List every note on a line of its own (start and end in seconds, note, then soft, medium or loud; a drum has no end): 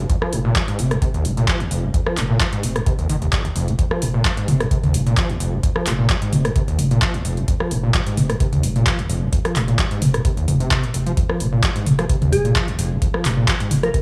0.10 0.16 F2 medium
0.10 kick loud
0.10 closed hi-hat medium
0.22 0.34 F3 medium
0.22 cross-stick medium
0.33 0.52 F1 medium
0.33 0.39 G#2 medium
0.33 open hi-hat loud
0.45 0.54 A#2 loud
0.56 0.62 F3 loud
0.56 kick loud
0.56 clap loud
0.56 closed hi-hat medium
0.68 0.80 G#2 loud
0.68 closed hi-hat soft
0.79 0.98 F1 medium
0.79 0.93 C3 medium
0.79 open hi-hat loud
0.91 0.97 G2 loud
0.91 cross-stick medium
0.91 closed hi-hat soft
1.02 1.09 C3 medium
1.02 kick loud
1.02 closed hi-hat medium
1.14 1.26 D#2 loud
1.14 closed hi-hat soft
1.25 1.44 F1 medium
1.25 1.32 G#2 medium
1.25 open hi-hat loud
1.37 1.46 A#2 loud
1.37 closed hi-hat soft
1.48 1.62 F3 loud
1.48 kick loud
1.48 clap loud
1.48 closed hi-hat medium
1.60 1.69 D#2 medium
1.60 closed hi-hat soft
1.71 1.91 F1 loud
1.71 1.85 F2 medium
1.71 open hi-hat loud
1.83 1.89 G2 medium
1.94 2.01 F2 medium
1.94 kick loud
1.94 closed hi-hat medium
2.06 2.19 F3 medium
2.06 cross-stick medium
2.17 2.37 F1 loud
2.17 2.24 G#2 medium
2.17 clap medium
2.17 open hi-hat medium
2.30 2.38 A#2 loud
2.40 2.47 F3 loud
2.40 kick loud
2.40 clap loud
2.40 closed hi-hat medium
2.53 2.65 G#2 loud
2.53 closed hi-hat soft
2.63 2.83 F1 medium
2.63 2.77 C3 medium
2.63 open hi-hat loud
2.76 2.82 G2 loud
2.76 cross-stick medium
2.76 closed hi-hat soft
2.86 2.93 C3 medium
2.86 kick loud
2.86 closed hi-hat medium
2.99 3.08 D#2 loud
2.99 closed hi-hat soft
3.09 3.29 F1 medium
3.09 3.16 D#3 loud
3.09 kick medium
3.09 open hi-hat loud
3.22 3.28 D#2 loud
3.22 closed hi-hat soft
3.33 3.43 F2 medium
3.33 kick loud
3.33 clap loud
3.33 closed hi-hat medium
3.45 3.49 D#2 loud
3.45 closed hi-hat soft
3.56 3.75 F1 medium
3.56 3.70 F2 loud
3.56 open hi-hat loud
3.68 3.74 A#2 medium
3.68 closed hi-hat soft
3.79 3.86 F2 medium
3.79 kick loud
3.79 closed hi-hat medium
3.91 4.03 F3 medium
3.91 cross-stick medium
4.02 4.21 F1 loud
4.02 4.09 G#2 medium
4.02 open hi-hat medium
4.14 4.23 A#2 loud
4.25 4.32 F3 loud
4.25 kick loud
4.25 clap loud
4.25 closed hi-hat medium
4.37 4.50 G#2 loud
4.37 closed hi-hat soft
4.48 4.68 F1 medium
4.48 4.62 C3 medium
4.48 open hi-hat loud
4.48 mid tom medium
4.60 4.66 G2 loud
4.60 cross-stick medium
4.60 closed hi-hat soft
4.71 4.78 C3 medium
4.71 kick loud
4.71 closed hi-hat medium
4.83 4.96 D#2 loud
4.83 closed hi-hat soft
4.83 mid tom medium
4.94 5.14 F1 medium
4.94 5.01 G#2 medium
4.94 open hi-hat loud
5.07 5.15 A#2 medium
5.07 closed hi-hat soft
5.17 5.31 F3 loud
5.17 kick loud
5.17 clap loud
5.17 closed hi-hat medium
5.30 5.38 D#2 loud
5.30 closed hi-hat soft
5.40 5.60 F1 loud
5.40 5.54 F2 medium
5.40 open hi-hat loud
5.53 5.59 G2 loud
5.63 5.70 F2 medium
5.63 kick loud
5.63 closed hi-hat medium
5.76 5.88 F3 medium
5.76 cross-stick medium
5.86 6.06 F1 loud
5.86 5.93 G#2 medium
5.86 clap medium
5.86 open hi-hat medium
5.99 6.08 A#2 loud
6.10 6.16 F3 loud
6.10 kick loud
6.10 clap loud
6.10 closed hi-hat medium
6.22 6.34 G#2 loud
6.22 closed hi-hat soft
6.33 6.52 F1 medium
6.33 6.47 C3 medium
6.33 open hi-hat loud
6.33 mid tom medium
6.45 6.51 G2 loud
6.45 cross-stick medium
6.45 closed hi-hat soft
6.56 6.63 C3 medium
6.56 kick loud
6.56 closed hi-hat medium
6.68 6.80 D#2 loud
6.68 closed hi-hat soft
6.79 6.98 F1 loud
6.79 6.86 G#2 medium
6.79 open hi-hat medium
6.79 mid tom medium
6.91 7.00 A#2 loud
6.91 closed hi-hat soft
7.02 7.16 F3 loud
7.02 kick loud
7.02 clap loud
7.02 closed hi-hat medium
7.14 7.23 D#2 loud
7.14 closed hi-hat soft
7.25 7.44 F1 loud
7.25 7.39 F2 medium
7.25 open hi-hat medium
7.37 7.43 G2 loud
7.37 closed hi-hat soft
7.48 7.55 F2 medium
7.48 kick loud
7.48 closed hi-hat medium
7.60 7.73 F3 medium
7.60 cross-stick medium
7.71 7.91 F1 loud
7.71 7.78 G#2 medium
7.71 open hi-hat medium
7.83 7.92 A#2 loud
7.94 8.01 F3 loud
7.94 kick loud
7.94 clap loud
7.94 closed hi-hat medium
8.07 8.19 G#2 loud
8.07 closed hi-hat medium
8.17 8.37 F1 medium
8.17 8.31 C3 medium
8.17 open hi-hat loud
8.17 mid tom medium
8.30 8.35 G2 medium
8.30 cross-stick medium
8.30 closed hi-hat medium
8.40 8.47 C3 medium
8.40 kick loud
8.40 closed hi-hat medium
8.53 8.65 D#2 loud
8.53 closed hi-hat soft
8.53 mid tom medium
8.63 8.83 F1 medium
8.63 8.70 G#2 medium
8.63 open hi-hat medium
8.76 8.85 A#2 loud
8.76 closed hi-hat soft
8.86 9.00 F3 loud
8.86 kick loud
8.86 clap loud
8.86 closed hi-hat medium
8.99 9.08 D#2 loud
8.99 closed hi-hat soft
9.10 9.29 F1 loud
9.10 9.23 F2 medium
9.10 open hi-hat medium
9.22 9.28 G2 loud
9.33 9.39 F2 medium
9.33 kick loud
9.33 closed hi-hat medium
9.45 9.57 F3 medium
9.45 cross-stick medium
9.45 closed hi-hat soft
9.56 9.75 F1 loud
9.56 9.62 G#2 medium
9.56 clap medium
9.56 open hi-hat medium
9.68 9.77 A#2 loud
9.68 closed hi-hat soft
9.79 9.86 F3 loud
9.79 kick loud
9.79 clap loud
9.79 closed hi-hat medium
9.91 10.03 G#2 loud
9.91 closed hi-hat medium
10.02 10.21 F1 medium
10.02 10.16 C3 medium
10.02 open hi-hat loud
10.02 mid tom medium
10.14 10.20 G2 loud
10.14 cross-stick medium
10.14 closed hi-hat medium
10.25 10.32 C3 medium
10.25 kick loud
10.25 closed hi-hat medium
10.37 10.46 D#2 loud
10.37 closed hi-hat soft
10.48 10.68 F1 medium
10.48 10.55 F2 medium
10.48 open hi-hat loud
10.48 mid tom medium
10.60 10.69 C3 loud
10.60 closed hi-hat soft
10.71 10.85 C3 loud
10.71 kick loud
10.71 clap loud
10.71 closed hi-hat medium
10.83 10.89 A#2 medium
10.83 closed hi-hat soft
10.94 11.14 F1 medium
10.94 10.98 F2 medium
10.94 open hi-hat medium
11.06 11.12 F3 loud
11.06 closed hi-hat soft
11.17 11.24 F2 medium
11.17 kick loud
11.17 closed hi-hat medium
11.29 11.42 F3 medium
11.29 cross-stick medium
11.40 11.60 F1 loud
11.40 11.47 G#2 medium
11.40 open hi-hat loud
11.53 11.61 A#2 loud
11.63 11.70 F3 loud
11.63 kick loud
11.63 clap loud
11.63 closed hi-hat medium
11.76 11.88 G#2 loud
11.76 closed hi-hat medium
11.86 12.06 F1 medium
11.86 11.93 C3 medium
11.86 open hi-hat loud
11.86 mid tom medium
11.99 12.05 F3 loud
11.99 cross-stick medium
11.99 closed hi-hat medium
12.09 12.16 C3 medium
12.09 kick loud
12.09 closed hi-hat medium
12.22 12.34 D#2 loud
12.22 closed hi-hat soft
12.22 mid tom medium
12.32 12.52 F1 loud
12.32 12.39 G#2 medium
12.32 12.97 G#4 medium
12.32 open hi-hat loud
12.45 12.54 A#2 loud
12.45 closed hi-hat soft
12.56 12.69 F3 loud
12.56 kick loud
12.56 clap loud
12.56 closed hi-hat medium
12.68 12.77 D#2 loud
12.68 closed hi-hat soft
12.79 12.98 F1 loud
12.79 12.93 F2 medium
12.79 open hi-hat loud
12.91 12.97 G2 loud
13.02 13.09 F2 medium
13.02 kick loud
13.02 closed hi-hat medium
13.14 13.26 F3 medium
13.14 cross-stick medium
13.25 13.44 F1 loud
13.25 13.32 G#2 medium
13.25 clap medium
13.25 open hi-hat loud
13.37 13.46 A#2 loud
13.48 13.55 F3 loud
13.48 kick loud
13.48 clap loud
13.48 closed hi-hat medium
13.60 13.73 G#2 loud
13.60 closed hi-hat medium
13.71 13.91 F1 medium
13.71 13.78 C3 medium
13.71 open hi-hat loud
13.71 mid tom medium
13.83 13.89 F3 loud
13.83 14.02 A#4 medium
13.83 cross-stick medium
13.83 closed hi-hat medium
13.94 14.01 C3 medium
13.94 kick loud
13.94 closed hi-hat medium